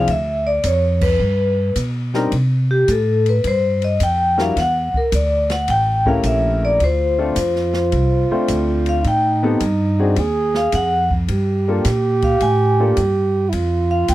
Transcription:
0.07 upright bass D2, vibraphone E5, kick, ride
0.47 vibraphone D5
0.64 upright bass F2, vibraphone C#5, kick, hi-hat pedal, ride
1.01 vibraphone B4, kick, crash
1.20 upright bass G2
1.76 upright bass B2, kick, hi-hat pedal, ride
2.14 upright piano G3 C4 D4 D#4 A#4, snare
2.32 upright bass C3, kick, ride
2.71 vibraphone G4
2.88 upright bass A2, vibraphone A4, kick, hi-hat pedal, ride
3.26 vibraphone B4, ride
3.44 upright bass G2, vibraphone C5, kick, ride
3.82 vibraphone D#5, ride
4.00 upright bass F2, vibraphone G5, kick, hi-hat pedal, ride
4.38 upright piano G3 D4 E4 F#4 A#4, vibraphone F5, snare
4.56 upright bass E2, vibraphone F#5, kick, snare, ride
4.94 vibraphone A#4, muted upright bass stroke, kick
5.12 upright bass D2, vibraphone D5, kick, hi-hat pedal, ride
5.50 vibraphone F#5, snare, ride
5.68 upright bass A1, vibraphone G5, kick, ride
6.06 upright piano A3 C#4 E4 G4 A#4, vibraphone F5, kick
6.23 upright bass A#1, vibraphone E5, kick, hi-hat pedal, ride
6.65 vibraphone D5
6.80 upright bass D2, trombone F4, vibraphone C5, kick, ride
7.18 upright piano A3 C4 D4 F4 A4
7.36 upright bass F2, kick, hi-hat pedal, ride
7.55 snare
7.74 snare
7.92 upright bass C2, kick, ride
8.30 upright piano A3 C4 D4 F4 C5, muted upright bass stroke
8.48 upright bass D2, kick, hi-hat pedal, ride
8.86 vibraphone F5, ride
9.04 upright bass A2, trombone D#4, vibraphone G5, kick, ride
9.43 upright piano B3 C4 D#4 G4 A4
9.60 upright bass G2, kick, hi-hat pedal, ride
9.99 upright piano C4 D4 D#4 F#4 G#4
10.16 upright bass D#2, trombone G#4, kick, ride
10.55 vibraphone F5, snare
10.72 upright bass F2, vibraphone F#5, kick, hi-hat pedal, ride
11.11 kick
11.28 upright bass G2, trombone G4, kick, ride
11.68 upright piano A#3 D4 F4 G4 A4
11.85 upright bass A#2, kick, snare, hi-hat pedal, ride
12.22 vibraphone F5, kick, ride
12.40 upright bass A2, vibraphone G#5, kick, ride
12.80 upright piano A#3 D4 F4 G4 A4
12.97 upright bass G2, kick, hi-hat pedal, ride
13.49 upright bass F2, trombone E4 F4, kick, ride
13.91 vibraphone F5
14.08 upright bass D#2, vibraphone G5, kick, hi-hat pedal, ride

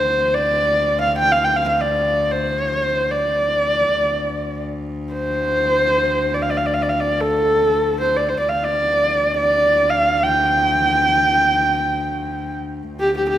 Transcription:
Already playing: cello D2, horsehead fiddle C5
0.34 horsehead fiddle D5
1.01 horsehead fiddle F5
1.18 horsehead fiddle G5
1.32 horsehead fiddle F5
1.44 horsehead fiddle G5
1.56 horsehead fiddle F5
1.68 horsehead fiddle F5
1.80 horsehead fiddle D5
2.31 horsehead fiddle C5
3.11 horsehead fiddle D5
3.97 cello D2
5.12 horsehead fiddle C5
6.34 horsehead fiddle D5
6.42 horsehead fiddle F5
6.50 horsehead fiddle D5
6.57 horsehead fiddle F5
6.66 horsehead fiddle D5
6.74 horsehead fiddle F5
6.82 horsehead fiddle D5
6.89 horsehead fiddle F5
7.00 horsehead fiddle D5
7.21 horsehead fiddle A4
8.01 horsehead fiddle C5
8.16 horsehead fiddle D5
8.29 horsehead fiddle C5
8.40 horsehead fiddle D5
8.45 cello D2, horsehead fiddle F5
8.64 horsehead fiddle D5
9.38 horsehead fiddle D5
9.90 horsehead fiddle F5
10.23 horsehead fiddle G5
12.92 cello D2
13.00 horsehead fiddle G4
13.17 horsehead fiddle G4
13.29 horsehead fiddle G4

